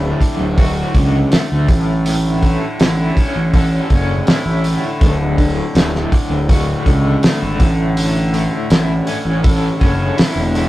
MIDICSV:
0, 0, Header, 1, 5, 480
1, 0, Start_track
1, 0, Key_signature, 2, "major"
1, 0, Tempo, 738007
1, 1340, Time_signature, 4, 2, 24, 8
1, 6951, End_track
2, 0, Start_track
2, 0, Title_t, "Overdriven electric guitar"
2, 0, Program_c, 0, 29
2, 0, Note_on_c, 0, 38, 60
2, 0, Note_on_c, 0, 45, 63
2, 0, Note_on_c, 0, 57, 64
2, 135, Note_on_c, 0, 50, 65
2, 378, Note_on_c, 0, 66, 74
2, 606, Note_off_c, 0, 50, 0
2, 614, Note_on_c, 0, 50, 70
2, 618, Note_off_c, 0, 38, 0
2, 855, Note_off_c, 0, 57, 0
2, 857, Note_on_c, 0, 57, 69
2, 859, Note_off_c, 0, 45, 0
2, 1097, Note_off_c, 0, 50, 0
2, 1100, Note_off_c, 0, 66, 0
2, 1102, Note_on_c, 0, 45, 70
2, 1332, Note_off_c, 0, 45, 0
2, 1340, Note_on_c, 0, 45, 67
2, 1587, Note_off_c, 0, 57, 0
2, 1587, Note_on_c, 0, 57, 63
2, 1830, Note_on_c, 0, 64, 65
2, 2071, Note_on_c, 0, 61, 66
2, 2313, Note_on_c, 0, 69, 71
2, 2542, Note_off_c, 0, 45, 0
2, 2549, Note_off_c, 0, 61, 0
2, 2557, Note_on_c, 0, 61, 66
2, 2787, Note_off_c, 0, 64, 0
2, 2795, Note_on_c, 0, 64, 67
2, 3032, Note_off_c, 0, 57, 0
2, 3035, Note_on_c, 0, 57, 67
2, 3267, Note_on_c, 0, 38, 71
2, 3269, Note_off_c, 0, 64, 0
2, 3270, Note_off_c, 0, 61, 0
2, 3511, Note_on_c, 0, 45, 73
2, 3747, Note_off_c, 0, 57, 0
2, 3747, Note_on_c, 0, 57, 61
2, 3983, Note_on_c, 0, 50, 67
2, 4220, Note_off_c, 0, 69, 0
2, 4222, Note_on_c, 0, 66, 68
2, 4461, Note_off_c, 0, 50, 0
2, 4465, Note_off_c, 0, 38, 0
2, 4468, Note_on_c, 0, 50, 71
2, 4698, Note_off_c, 0, 57, 0
2, 4700, Note_on_c, 0, 57, 74
2, 4707, Note_off_c, 0, 45, 0
2, 4942, Note_off_c, 0, 66, 0
2, 4944, Note_on_c, 0, 45, 69
2, 4945, Note_off_c, 0, 50, 0
2, 5180, Note_off_c, 0, 45, 0
2, 5188, Note_on_c, 0, 45, 61
2, 5420, Note_off_c, 0, 57, 0
2, 5420, Note_on_c, 0, 57, 68
2, 5662, Note_on_c, 0, 64, 67
2, 5900, Note_on_c, 0, 61, 69
2, 6135, Note_on_c, 0, 69, 77
2, 6368, Note_off_c, 0, 61, 0
2, 6376, Note_on_c, 0, 61, 64
2, 6383, Note_off_c, 0, 45, 0
2, 6607, Note_off_c, 0, 64, 0
2, 6615, Note_on_c, 0, 64, 72
2, 6856, Note_off_c, 0, 57, 0
2, 6858, Note_on_c, 0, 57, 67
2, 6951, Note_off_c, 0, 57, 0
2, 6951, Note_off_c, 0, 61, 0
2, 6951, Note_off_c, 0, 64, 0
2, 6951, Note_off_c, 0, 69, 0
2, 6951, End_track
3, 0, Start_track
3, 0, Title_t, "Tanpura"
3, 0, Program_c, 1, 104
3, 0, Note_on_c, 1, 38, 56
3, 0, Note_on_c, 1, 45, 56
3, 0, Note_on_c, 1, 50, 52
3, 0, Note_on_c, 1, 62, 62
3, 226, Note_on_c, 1, 54, 54
3, 1041, Note_off_c, 1, 45, 0
3, 1043, Note_on_c, 1, 45, 53
3, 1455, Note_off_c, 1, 50, 0
3, 1455, Note_on_c, 1, 50, 58
3, 1857, Note_off_c, 1, 50, 0
3, 1857, Note_on_c, 1, 50, 62
3, 2260, Note_off_c, 1, 38, 0
3, 2263, Note_on_c, 1, 38, 62
3, 2664, Note_off_c, 1, 45, 0
3, 2666, Note_on_c, 1, 45, 67
3, 3081, Note_off_c, 1, 50, 0
3, 3081, Note_on_c, 1, 50, 58
3, 3169, Note_off_c, 1, 62, 0
3, 3489, Note_on_c, 1, 62, 65
3, 4321, Note_off_c, 1, 45, 0
3, 4324, Note_on_c, 1, 45, 62
3, 4630, Note_off_c, 1, 54, 0
3, 4720, Note_off_c, 1, 50, 0
3, 4723, Note_on_c, 1, 50, 65
3, 5109, Note_off_c, 1, 50, 0
3, 5109, Note_on_c, 1, 50, 67
3, 5527, Note_off_c, 1, 38, 0
3, 5530, Note_on_c, 1, 38, 60
3, 5922, Note_off_c, 1, 45, 0
3, 5924, Note_on_c, 1, 45, 58
3, 6335, Note_off_c, 1, 50, 0
3, 6335, Note_on_c, 1, 50, 63
3, 6747, Note_off_c, 1, 50, 0
3, 6747, Note_on_c, 1, 50, 58
3, 6827, Note_off_c, 1, 62, 0
3, 6951, Note_off_c, 1, 38, 0
3, 6951, Note_off_c, 1, 45, 0
3, 6951, Note_off_c, 1, 50, 0
3, 6951, End_track
4, 0, Start_track
4, 0, Title_t, "Fingered electric bass"
4, 0, Program_c, 2, 33
4, 0, Note_on_c, 2, 26, 86
4, 77, Note_off_c, 2, 26, 0
4, 250, Note_on_c, 2, 26, 75
4, 534, Note_off_c, 2, 26, 0
4, 614, Note_on_c, 2, 37, 82
4, 803, Note_off_c, 2, 37, 0
4, 987, Note_on_c, 2, 38, 92
4, 1077, Note_off_c, 2, 38, 0
4, 1095, Note_on_c, 2, 33, 96
4, 1659, Note_off_c, 2, 33, 0
4, 1826, Note_on_c, 2, 33, 90
4, 2011, Note_off_c, 2, 33, 0
4, 2182, Note_on_c, 2, 33, 77
4, 2463, Note_off_c, 2, 33, 0
4, 2542, Note_on_c, 2, 30, 79
4, 2729, Note_off_c, 2, 30, 0
4, 2898, Note_on_c, 2, 33, 92
4, 3087, Note_off_c, 2, 33, 0
4, 3259, Note_on_c, 2, 26, 102
4, 3635, Note_off_c, 2, 26, 0
4, 3738, Note_on_c, 2, 26, 86
4, 3927, Note_off_c, 2, 26, 0
4, 4095, Note_on_c, 2, 26, 83
4, 4379, Note_off_c, 2, 26, 0
4, 4463, Note_on_c, 2, 37, 82
4, 4650, Note_off_c, 2, 37, 0
4, 4828, Note_on_c, 2, 32, 91
4, 4919, Note_off_c, 2, 32, 0
4, 4944, Note_on_c, 2, 33, 99
4, 5504, Note_off_c, 2, 33, 0
4, 5659, Note_on_c, 2, 33, 86
4, 5847, Note_off_c, 2, 33, 0
4, 6016, Note_on_c, 2, 33, 73
4, 6298, Note_off_c, 2, 33, 0
4, 6379, Note_on_c, 2, 30, 79
4, 6566, Note_off_c, 2, 30, 0
4, 6734, Note_on_c, 2, 28, 94
4, 6923, Note_off_c, 2, 28, 0
4, 6951, End_track
5, 0, Start_track
5, 0, Title_t, "Drums"
5, 134, Note_on_c, 9, 36, 71
5, 139, Note_on_c, 9, 46, 53
5, 199, Note_off_c, 9, 36, 0
5, 204, Note_off_c, 9, 46, 0
5, 375, Note_on_c, 9, 36, 104
5, 376, Note_on_c, 9, 46, 72
5, 440, Note_off_c, 9, 36, 0
5, 441, Note_off_c, 9, 46, 0
5, 615, Note_on_c, 9, 36, 79
5, 615, Note_on_c, 9, 46, 57
5, 680, Note_off_c, 9, 36, 0
5, 680, Note_off_c, 9, 46, 0
5, 857, Note_on_c, 9, 46, 84
5, 865, Note_on_c, 9, 38, 104
5, 922, Note_off_c, 9, 46, 0
5, 930, Note_off_c, 9, 38, 0
5, 1095, Note_on_c, 9, 46, 53
5, 1096, Note_on_c, 9, 36, 105
5, 1160, Note_off_c, 9, 46, 0
5, 1161, Note_off_c, 9, 36, 0
5, 1339, Note_on_c, 9, 46, 83
5, 1404, Note_off_c, 9, 46, 0
5, 1578, Note_on_c, 9, 36, 69
5, 1579, Note_on_c, 9, 46, 50
5, 1643, Note_off_c, 9, 36, 0
5, 1644, Note_off_c, 9, 46, 0
5, 1818, Note_on_c, 9, 46, 71
5, 1826, Note_on_c, 9, 38, 111
5, 1883, Note_off_c, 9, 46, 0
5, 1891, Note_off_c, 9, 38, 0
5, 2060, Note_on_c, 9, 36, 72
5, 2063, Note_on_c, 9, 46, 53
5, 2125, Note_off_c, 9, 36, 0
5, 2129, Note_off_c, 9, 46, 0
5, 2300, Note_on_c, 9, 36, 108
5, 2300, Note_on_c, 9, 46, 74
5, 2365, Note_off_c, 9, 36, 0
5, 2365, Note_off_c, 9, 46, 0
5, 2537, Note_on_c, 9, 46, 49
5, 2539, Note_on_c, 9, 36, 82
5, 2602, Note_off_c, 9, 46, 0
5, 2604, Note_off_c, 9, 36, 0
5, 2777, Note_on_c, 9, 46, 73
5, 2785, Note_on_c, 9, 38, 106
5, 2842, Note_off_c, 9, 46, 0
5, 2850, Note_off_c, 9, 38, 0
5, 3019, Note_on_c, 9, 46, 55
5, 3084, Note_off_c, 9, 46, 0
5, 3260, Note_on_c, 9, 36, 115
5, 3261, Note_on_c, 9, 46, 78
5, 3325, Note_off_c, 9, 36, 0
5, 3326, Note_off_c, 9, 46, 0
5, 3500, Note_on_c, 9, 36, 73
5, 3500, Note_on_c, 9, 46, 50
5, 3565, Note_off_c, 9, 36, 0
5, 3565, Note_off_c, 9, 46, 0
5, 3742, Note_on_c, 9, 46, 74
5, 3750, Note_on_c, 9, 38, 105
5, 3807, Note_off_c, 9, 46, 0
5, 3815, Note_off_c, 9, 38, 0
5, 3871, Note_on_c, 9, 38, 32
5, 3936, Note_off_c, 9, 38, 0
5, 3982, Note_on_c, 9, 36, 74
5, 3982, Note_on_c, 9, 46, 57
5, 4047, Note_off_c, 9, 36, 0
5, 4047, Note_off_c, 9, 46, 0
5, 4222, Note_on_c, 9, 36, 105
5, 4224, Note_on_c, 9, 46, 73
5, 4287, Note_off_c, 9, 36, 0
5, 4289, Note_off_c, 9, 46, 0
5, 4462, Note_on_c, 9, 36, 74
5, 4463, Note_on_c, 9, 46, 54
5, 4527, Note_off_c, 9, 36, 0
5, 4528, Note_off_c, 9, 46, 0
5, 4703, Note_on_c, 9, 46, 76
5, 4710, Note_on_c, 9, 38, 112
5, 4768, Note_off_c, 9, 46, 0
5, 4775, Note_off_c, 9, 38, 0
5, 4942, Note_on_c, 9, 36, 102
5, 4942, Note_on_c, 9, 46, 60
5, 5007, Note_off_c, 9, 36, 0
5, 5007, Note_off_c, 9, 46, 0
5, 5184, Note_on_c, 9, 46, 82
5, 5249, Note_off_c, 9, 46, 0
5, 5424, Note_on_c, 9, 46, 56
5, 5489, Note_off_c, 9, 46, 0
5, 5661, Note_on_c, 9, 46, 70
5, 5669, Note_on_c, 9, 38, 101
5, 5726, Note_off_c, 9, 46, 0
5, 5734, Note_off_c, 9, 38, 0
5, 5899, Note_on_c, 9, 46, 55
5, 5964, Note_off_c, 9, 46, 0
5, 6141, Note_on_c, 9, 46, 73
5, 6142, Note_on_c, 9, 36, 110
5, 6206, Note_off_c, 9, 46, 0
5, 6207, Note_off_c, 9, 36, 0
5, 6381, Note_on_c, 9, 46, 49
5, 6382, Note_on_c, 9, 36, 87
5, 6446, Note_off_c, 9, 46, 0
5, 6447, Note_off_c, 9, 36, 0
5, 6622, Note_on_c, 9, 46, 78
5, 6630, Note_on_c, 9, 38, 119
5, 6687, Note_off_c, 9, 46, 0
5, 6695, Note_off_c, 9, 38, 0
5, 6863, Note_on_c, 9, 46, 55
5, 6928, Note_off_c, 9, 46, 0
5, 6951, End_track
0, 0, End_of_file